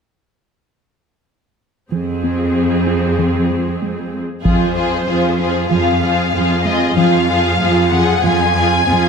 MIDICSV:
0, 0, Header, 1, 7, 480
1, 0, Start_track
1, 0, Key_signature, -4, "minor"
1, 0, Tempo, 631579
1, 1461, Time_signature, 4, 2, 24, 8
1, 6906, End_track
2, 0, Start_track
2, 0, Title_t, "Violin section"
2, 0, Program_c, 0, 48
2, 3372, Note_on_c, 0, 72, 57
2, 4306, Note_off_c, 0, 72, 0
2, 4331, Note_on_c, 0, 77, 57
2, 5042, Note_off_c, 0, 77, 0
2, 5053, Note_on_c, 0, 75, 49
2, 5292, Note_on_c, 0, 77, 67
2, 5297, Note_off_c, 0, 75, 0
2, 6002, Note_off_c, 0, 77, 0
2, 6016, Note_on_c, 0, 78, 66
2, 6259, Note_off_c, 0, 78, 0
2, 6261, Note_on_c, 0, 80, 83
2, 6906, Note_off_c, 0, 80, 0
2, 6906, End_track
3, 0, Start_track
3, 0, Title_t, "Violin section"
3, 0, Program_c, 1, 48
3, 3369, Note_on_c, 1, 68, 32
3, 3372, Note_on_c, 1, 65, 31
3, 3610, Note_off_c, 1, 68, 0
3, 3611, Note_off_c, 1, 65, 0
3, 3620, Note_on_c, 1, 65, 32
3, 3622, Note_on_c, 1, 68, 34
3, 3845, Note_off_c, 1, 68, 0
3, 3846, Note_off_c, 1, 65, 0
3, 3854, Note_on_c, 1, 68, 31
3, 3855, Note_on_c, 1, 65, 30
3, 4086, Note_off_c, 1, 68, 0
3, 4091, Note_off_c, 1, 65, 0
3, 4095, Note_on_c, 1, 68, 31
3, 4101, Note_on_c, 1, 65, 30
3, 4333, Note_off_c, 1, 68, 0
3, 4336, Note_off_c, 1, 65, 0
3, 4343, Note_on_c, 1, 65, 31
3, 4343, Note_on_c, 1, 68, 31
3, 4572, Note_off_c, 1, 68, 0
3, 4573, Note_off_c, 1, 65, 0
3, 4581, Note_on_c, 1, 68, 33
3, 4582, Note_on_c, 1, 65, 32
3, 4814, Note_off_c, 1, 65, 0
3, 4814, Note_off_c, 1, 68, 0
3, 4823, Note_on_c, 1, 65, 35
3, 4823, Note_on_c, 1, 68, 31
3, 5045, Note_off_c, 1, 68, 0
3, 5046, Note_off_c, 1, 65, 0
3, 5054, Note_on_c, 1, 68, 41
3, 5055, Note_on_c, 1, 65, 41
3, 5288, Note_off_c, 1, 68, 0
3, 5289, Note_off_c, 1, 65, 0
3, 5297, Note_on_c, 1, 68, 43
3, 5298, Note_on_c, 1, 65, 39
3, 5532, Note_off_c, 1, 65, 0
3, 5534, Note_off_c, 1, 68, 0
3, 5541, Note_on_c, 1, 65, 38
3, 5544, Note_on_c, 1, 68, 39
3, 5765, Note_off_c, 1, 65, 0
3, 5765, Note_off_c, 1, 68, 0
3, 5774, Note_on_c, 1, 65, 39
3, 5774, Note_on_c, 1, 68, 38
3, 6012, Note_off_c, 1, 68, 0
3, 6013, Note_off_c, 1, 65, 0
3, 6021, Note_on_c, 1, 65, 38
3, 6021, Note_on_c, 1, 68, 38
3, 6245, Note_off_c, 1, 68, 0
3, 6247, Note_off_c, 1, 65, 0
3, 6254, Note_on_c, 1, 68, 39
3, 6256, Note_on_c, 1, 65, 38
3, 6482, Note_off_c, 1, 65, 0
3, 6485, Note_off_c, 1, 68, 0
3, 6492, Note_on_c, 1, 65, 42
3, 6494, Note_on_c, 1, 68, 40
3, 6728, Note_off_c, 1, 65, 0
3, 6728, Note_off_c, 1, 68, 0
3, 6737, Note_on_c, 1, 65, 44
3, 6737, Note_on_c, 1, 68, 47
3, 6906, Note_off_c, 1, 65, 0
3, 6906, Note_off_c, 1, 68, 0
3, 6906, End_track
4, 0, Start_track
4, 0, Title_t, "Viola section"
4, 0, Program_c, 2, 48
4, 1462, Note_on_c, 2, 60, 37
4, 1463, Note_on_c, 2, 68, 42
4, 3199, Note_off_c, 2, 60, 0
4, 3200, Note_off_c, 2, 68, 0
4, 3386, Note_on_c, 2, 53, 34
4, 3388, Note_on_c, 2, 65, 34
4, 3611, Note_off_c, 2, 65, 0
4, 3612, Note_off_c, 2, 53, 0
4, 3620, Note_on_c, 2, 65, 31
4, 3621, Note_on_c, 2, 53, 33
4, 3853, Note_off_c, 2, 65, 0
4, 3856, Note_off_c, 2, 53, 0
4, 3863, Note_on_c, 2, 65, 35
4, 3866, Note_on_c, 2, 53, 37
4, 4097, Note_off_c, 2, 65, 0
4, 4099, Note_off_c, 2, 53, 0
4, 4108, Note_on_c, 2, 53, 31
4, 4109, Note_on_c, 2, 65, 36
4, 4338, Note_off_c, 2, 53, 0
4, 4340, Note_off_c, 2, 65, 0
4, 4347, Note_on_c, 2, 53, 36
4, 4349, Note_on_c, 2, 65, 33
4, 4576, Note_off_c, 2, 53, 0
4, 4576, Note_off_c, 2, 65, 0
4, 4585, Note_on_c, 2, 53, 36
4, 4585, Note_on_c, 2, 65, 31
4, 4814, Note_off_c, 2, 65, 0
4, 4818, Note_off_c, 2, 53, 0
4, 4823, Note_on_c, 2, 65, 33
4, 4826, Note_on_c, 2, 53, 32
4, 5057, Note_off_c, 2, 65, 0
4, 5059, Note_off_c, 2, 53, 0
4, 5068, Note_on_c, 2, 65, 32
4, 5070, Note_on_c, 2, 53, 34
4, 5292, Note_off_c, 2, 65, 0
4, 5293, Note_off_c, 2, 53, 0
4, 5301, Note_on_c, 2, 65, 40
4, 5302, Note_on_c, 2, 53, 44
4, 5531, Note_off_c, 2, 65, 0
4, 5533, Note_off_c, 2, 53, 0
4, 5540, Note_on_c, 2, 65, 35
4, 5542, Note_on_c, 2, 53, 39
4, 5768, Note_off_c, 2, 65, 0
4, 5771, Note_off_c, 2, 53, 0
4, 5778, Note_on_c, 2, 65, 47
4, 5780, Note_on_c, 2, 53, 46
4, 6014, Note_off_c, 2, 65, 0
4, 6016, Note_off_c, 2, 53, 0
4, 6025, Note_on_c, 2, 53, 42
4, 6027, Note_on_c, 2, 68, 41
4, 6258, Note_off_c, 2, 53, 0
4, 6259, Note_off_c, 2, 68, 0
4, 6269, Note_on_c, 2, 53, 45
4, 6272, Note_on_c, 2, 65, 43
4, 6496, Note_off_c, 2, 53, 0
4, 6497, Note_off_c, 2, 65, 0
4, 6505, Note_on_c, 2, 53, 39
4, 6506, Note_on_c, 2, 65, 41
4, 6734, Note_off_c, 2, 65, 0
4, 6735, Note_off_c, 2, 53, 0
4, 6743, Note_on_c, 2, 65, 40
4, 6744, Note_on_c, 2, 53, 43
4, 6906, Note_off_c, 2, 53, 0
4, 6906, Note_off_c, 2, 65, 0
4, 6906, End_track
5, 0, Start_track
5, 0, Title_t, "Synth arpeggio sound"
5, 0, Program_c, 3, 84
5, 1459, Note_on_c, 3, 53, 65
5, 1604, Note_off_c, 3, 53, 0
5, 1699, Note_on_c, 3, 60, 49
5, 1844, Note_off_c, 3, 60, 0
5, 2180, Note_on_c, 3, 65, 45
5, 2324, Note_off_c, 3, 65, 0
5, 2422, Note_on_c, 3, 53, 60
5, 2566, Note_off_c, 3, 53, 0
5, 2662, Note_on_c, 3, 56, 50
5, 2806, Note_off_c, 3, 56, 0
5, 2904, Note_on_c, 3, 56, 45
5, 3047, Note_off_c, 3, 56, 0
5, 3383, Note_on_c, 3, 53, 71
5, 3526, Note_off_c, 3, 53, 0
5, 4099, Note_on_c, 3, 65, 39
5, 4244, Note_off_c, 3, 65, 0
5, 4339, Note_on_c, 3, 53, 57
5, 4484, Note_off_c, 3, 53, 0
5, 4820, Note_on_c, 3, 60, 46
5, 4964, Note_off_c, 3, 60, 0
5, 5057, Note_on_c, 3, 56, 47
5, 5202, Note_off_c, 3, 56, 0
5, 5296, Note_on_c, 3, 53, 71
5, 5441, Note_off_c, 3, 53, 0
5, 6020, Note_on_c, 3, 53, 52
5, 6164, Note_off_c, 3, 53, 0
5, 6260, Note_on_c, 3, 53, 63
5, 6404, Note_off_c, 3, 53, 0
5, 6740, Note_on_c, 3, 60, 45
5, 6884, Note_off_c, 3, 60, 0
5, 6906, End_track
6, 0, Start_track
6, 0, Title_t, "Cello section"
6, 0, Program_c, 4, 48
6, 1457, Note_on_c, 4, 41, 36
6, 3196, Note_off_c, 4, 41, 0
6, 3378, Note_on_c, 4, 41, 36
6, 3803, Note_off_c, 4, 41, 0
6, 3861, Note_on_c, 4, 41, 40
6, 4284, Note_off_c, 4, 41, 0
6, 4338, Note_on_c, 4, 41, 44
6, 4763, Note_off_c, 4, 41, 0
6, 4817, Note_on_c, 4, 41, 38
6, 5242, Note_off_c, 4, 41, 0
6, 5299, Note_on_c, 4, 41, 50
6, 5723, Note_off_c, 4, 41, 0
6, 5781, Note_on_c, 4, 41, 52
6, 6204, Note_off_c, 4, 41, 0
6, 6259, Note_on_c, 4, 41, 59
6, 6683, Note_off_c, 4, 41, 0
6, 6742, Note_on_c, 4, 41, 54
6, 6906, Note_off_c, 4, 41, 0
6, 6906, End_track
7, 0, Start_track
7, 0, Title_t, "Taiko and cinematic ensemble drums"
7, 3385, Note_on_c, 9, 41, 38
7, 3461, Note_off_c, 9, 41, 0
7, 6906, End_track
0, 0, End_of_file